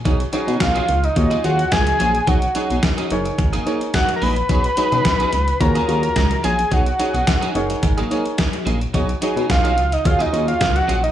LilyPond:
<<
  \new Staff \with { instrumentName = "Analog synth lead" } { \time 4/4 \key ces \lydian \tempo 4 = 108 r4 f''8. dis''8. ges''8 aes''4 | fis''4 r2 ges''16. bes''32 ces'''8~ | ces'''2 bes''4. aes''8 | fis''2 r2 |
r4 f''8. dis''16 f''16 ees''8 f''8 ges''8 ees''16 | }
  \new Staff \with { instrumentName = "Grand piano" } { \time 4/4 \key ces \lydian <dis' fis' gis' cis''>16 r16 <dis' fis' gis' cis''>4 r8 <f' ges' aes' des''>8 <f' ges' aes' des''>4 r8 | <dis' fis' gis' cis''>16 r16 <dis' fis' gis' cis''>4 <ees' aes' bes' des''>4 <ees' aes' bes' des''>4 r8 | <dis' fis' gis' cis''>16 r16 <dis' fis' gis' cis''>4 r8 <f' ges' aes' des''>8 <f' ges' aes' des''>4 r8 | <dis' fis' gis' cis''>16 r16 <dis' fis' gis' cis''>4 <ees' aes' bes' des''>4 <ees' aes' bes' des''>4 r8 |
<dis' fis' gis' cis''>16 r16 <dis' fis' gis' cis''>4 r8 <f' ges' aes' des''>8 <f' ges' aes' des''>4 r8 | }
  \new Staff \with { instrumentName = "Clean electric guitar" } { \time 4/4 \key ces \lydian <fis cis' dis' gis'>16 r16 <fis cis' dis' gis'>16 <fis cis' dis' gis'>16 r16 <fis cis' dis' gis'>16 r8. <ges des' f' aes'>16 <ges des' f' aes'>16 r8. <ges des' f' aes'>16 r16 | <fis cis' dis' gis'>16 r16 <fis cis' dis' gis'>16 <fis cis' dis' gis'>16 r16 <fis cis' dis' gis'>16 r8. <ges bes ees' aes'>16 <ges bes ees' aes'>16 r8. <ges bes ees' aes'>16 r16 | <fis cis' dis' gis'>16 r16 <fis cis' dis' gis'>16 <fis cis' dis' gis'>16 r16 <fis cis' dis' gis'>16 r8. <ges des' f' aes'>16 <ges des' f' aes'>16 r8. <ges des' f' aes'>16 r16 | <fis cis' dis' gis'>16 r16 <fis cis' dis' gis'>16 <fis cis' dis' gis'>16 r16 <fis cis' dis' gis'>16 r8. <ges bes ees' aes'>16 <ges bes ees' aes'>16 r8. <ges bes ees' aes'>16 r16 |
<fis cis' dis' gis'>16 r16 <fis cis' dis' gis'>16 <fis cis' dis' gis'>16 r16 <fis cis' dis' gis'>16 r8. <ges des' f' aes'>16 <ges des' f' aes'>16 r8. <ges des' f' aes'>16 r16 | }
  \new Staff \with { instrumentName = "Analog synth bass" } { \clef bass \time 4/4 \key ces \lydian b,,8 r16 b,16 b,,8 cis,8 ees,8 ees,8 des,8 bes,,8 | b,,8 r16 b,,16 r8 ges,,8 aes,,8 r4 bes,,8 | b,,8 r16 b,16 b,,8 cis,8 ees,8 ees,8 des,8 bes,,8 | b,,8 r16 b,,16 r8 ges,,8 aes,,8 r4 bes,,8 |
b,,8 r16 b,16 b,,8 cis,8 ees,8 ees,8 des,8 bes,,8 | }
  \new DrumStaff \with { instrumentName = "Drums" } \drummode { \time 4/4 <hh bd>16 hh16 hh16 hh16 <hh bd sn>16 hh16 hh16 hh16 <hh bd>16 hh16 hh16 hh16 <hh bd sn>16 hh16 hh16 hh16 | <hh bd>16 hh16 hh16 hh16 <hh bd sn>16 hh16 hh16 hh16 <hh bd>16 hh16 hh16 hh16 <hh bd sn>16 hh16 hho16 hh16 | <hh bd>16 hh16 hh16 hh16 <hh bd sn>16 hh16 hh16 hh16 <hh bd>16 hh16 hh16 hh16 <hh bd sn>16 hh16 hh16 hh16 | <hh bd>16 hh16 hh16 hh16 <hh bd sn>16 hh16 hh16 hh16 <hh bd>16 hh16 hh16 hh16 <hh bd sn>16 hh16 hh16 hh16 |
<hh bd>16 hh16 hh16 hh16 <hh bd sn>16 hh16 hh16 hh16 <hh bd>16 hh16 hh16 hh16 <hh bd sn>16 hh16 hh16 hh16 | }
>>